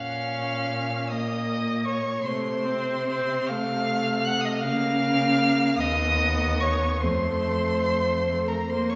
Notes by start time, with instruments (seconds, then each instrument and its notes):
Already playing: cello A#2, viola C#4, violin F5 F6
1.10 viola A#3, violin D#5 D#6
1.85 violin C#5 C#6
2.23 cello C3, viola A3, violin C5 C6
2.65 viola C4
3.09 viola C4
3.47 viola A3, violin F5 F6
4.24 violin F#5 F#6
4.41 violin D#5 D#6
4.58 violin F6
4.63 cello C#3, viola A#3, violin F5
5.78 cello D#2, viola B3, violin D#5 D#6
6.60 violin C#5 C#6
7.00 cello F2, viola A3, violin C5 C6
8.28 viola A3
8.48 violin A#4 A#5
8.69 viola A#3, violin C5 C6
8.90 violin C#5 C#6